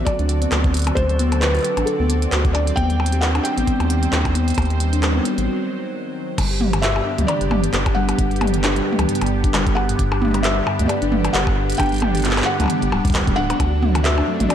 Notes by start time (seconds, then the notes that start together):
Already playing: D3 C4 F#4 A4 D5
0.05 F#3 D5, kick, closed hi-hat, percussion blips
0.19 D2 D4, closed hi-hat
0.29 F#3, closed hi-hat
0.42 B3, closed hi-hat
0.52 D2 F#3, clap, closed hi-hat, percussion blips
0.64 F#3, kick, closed hi-hat
0.74 F#4, closed hi-hat
0.77 closed hi-hat
0.79 closed hi-hat
0.82 closed hi-hat
0.84 F#3, closed hi-hat
0.87 closed hi-hat, percussion blips
0.95 D2 D4 C5, kick, closed hi-hat
1.09 F#3, closed hi-hat
1.19 B3, closed hi-hat
1.32 F#3, closed hi-hat, percussion blips
1.40 F#3 B4, clap, closed hi-hat
1.55 F#4, closed hi-hat
1.57 closed hi-hat
1.59 closed hi-hat
1.61 closed hi-hat
1.62 closed hi-hat
1.64 F#3, closed hi-hat
1.77 A1 D4, closed hi-hat, percussion blips
1.86 F#3 A4, closed hi-hat
2.00 D2 B3
2.10 F#3, closed hi-hat
2.22 F#3, closed hi-hat
2.32 D2 F#4, clap, closed hi-hat
2.45 F#3, kick, closed hi-hat
2.53 D4 D5, closed hi-hat, percussion blips
2.67 F#3, closed hi-hat
2.76 D#2 D#3 B3 G4 C5 G5, kick, closed hi-hat
2.90 G3, closed hi-hat
3.00 G3, percussion blips
3.06 closed hi-hat
3.12 G4, closed hi-hat
3.21 G3 F#5, clap, closed hi-hat
3.35 D4, closed hi-hat, percussion blips
3.43 G3 G5, closed hi-hat
3.58 A1 B3, closed hi-hat
3.67 G3, kick, closed hi-hat
3.80 D#2 G3, closed hi-hat, percussion blips
3.90 G4, closed hi-hat
4.03 G3, closed hi-hat
4.13 D#2 D4, clap, closed hi-hat
4.25 G3, kick, closed hi-hat, percussion blips
4.35 B3, closed hi-hat
4.48 G3, closed hi-hat
4.50 closed hi-hat
4.54 D#2 F#3 G3, kick, closed hi-hat
4.58 closed hi-hat, percussion blips
4.62 closed hi-hat
4.65 closed hi-hat
4.70 G4, closed hi-hat
4.80 G3, closed hi-hat
4.93 D4, closed hi-hat
5.03 G3, clap, closed hi-hat, percussion blips
5.15 B3
5.25 G3, closed hi-hat
5.38 A1 G3, closed hi-hat
6.38 G1 D3 G3 B3 D4 G4, kick, closed hi-hat, crash, percussion blips
6.41 percussion blips
6.44 percussion blips
6.48 G4, percussion blips
6.61 G4, mid tom
6.73 G2, closed hi-hat, percussion blips
6.82 G2 E5, clap, closed hi-hat
6.96 G4, percussion blips
7.06 D4
7.18 D2 G3, closed hi-hat, mid tom
7.27 G4 D5, closed hi-hat, percussion blips
7.41 G1 G4, closed hi-hat
7.51 G2, mid tom, percussion blips
7.64 G2, closed hi-hat
7.73 G1 G4, clap, closed hi-hat
7.86 D4, kick, closed hi-hat, percussion blips
7.95 G3 F#5
8.09 G4, closed hi-hat, percussion blips
8.19 G1 G4, kick, closed hi-hat
8.31 G2, closed hi-hat
8.36 closed hi-hat
8.41 G2, closed hi-hat, mid tom, percussion blips
8.47 closed hi-hat
8.54 G4, closed hi-hat
8.64 D4, clap, closed hi-hat, percussion blips
8.76 G3, closed hi-hat
8.86 G4
8.93 mid tom
8.99 D2 G4, closed hi-hat, percussion blips
9.09 G2, closed hi-hat
9.15 closed hi-hat
9.21 G1 G2, closed hi-hat, percussion blips
9.26 closed hi-hat
9.31 G4
9.44 D4, kick, closed hi-hat
9.54 G1 G3, clap, closed hi-hat, percussion blips
9.67 G4, kick, closed hi-hat
9.75 G4 F#5, percussion blips
9.89 G2, closed hi-hat
9.99 G1 G2, kick, closed hi-hat
10.12 G4, percussion blips
10.22 D4, mid tom
10.25 mid tom
10.28 mid tom
10.31 G3, closed hi-hat, mid tom
10.34 mid tom, percussion blips
10.37 mid tom
10.39 E5, mid tom
10.44 G4, clap, closed hi-hat
10.57 G4
10.67 G2, percussion blips
10.79 D2 G2, closed hi-hat, mid tom
10.82 mid tom
10.86 G4 D5, closed hi-hat, mid tom, percussion blips
11.02 G1 D4, closed hi-hat
11.12 G3, mid tom
11.24 G4, closed hi-hat, percussion blips
11.33 G1 G4 F#5, clap, closed hi-hat
11.47 G2, kick, percussion blips
11.57 G2
11.70 G4, closed hi-hat
11.72 closed hi-hat
11.75 closed hi-hat
11.77 G1 D4 G5, kick, closed hi-hat
11.80 closed hi-hat, percussion blips
11.86 closed hi-hat
11.89 G3, closed hi-hat
11.92 closed hi-hat
11.94 closed hi-hat
11.96 closed hi-hat
11.98 closed hi-hat
12.00 G4, closed hi-hat, mid tom, percussion blips
12.15 G4, closed hi-hat
12.17 closed hi-hat
12.20 closed hi-hat
12.22 G2, clap, closed hi-hat
12.25 closed hi-hat
12.31 clap, closed hi-hat
12.34 G2, clap, closed hi-hat
12.37 closed hi-hat, percussion blips
12.42 F#5, clap
12.47 G4
12.60 D2 D4, closed hi-hat, mid tom, percussion blips
12.62 percussion blips
12.64 percussion blips
12.66 percussion blips
12.68 G3, closed hi-hat, percussion blips
12.82 G1 G4, closed hi-hat
12.92 D1 G3, percussion blips
13.05 G3, kick, closed hi-hat
13.07 kick, closed hi-hat
13.10 closed hi-hat
13.12 D3, clap, closed hi-hat
13.15 kick, closed hi-hat, percussion blips
13.21 kick, closed hi-hat
13.24 A3, closed hi-hat
13.27 D1, kick, closed hi-hat
13.36 D1 D4 F#5
13.50 D4, closed hi-hat, percussion blips
13.60 D2 A3 C4 F#4, kick, closed hi-hat, percussion blips
13.73 F#4
13.82 F#2, mid tom
13.95 F#2, closed hi-hat, percussion blips
14.04 F#4 E5, clap, closed hi-hat
14.18 D4, percussion blips
14.28 F#3
14.40 A1 F#4, closed hi-hat, mid tom
14.49 F#4 D5, closed hi-hat, percussion blips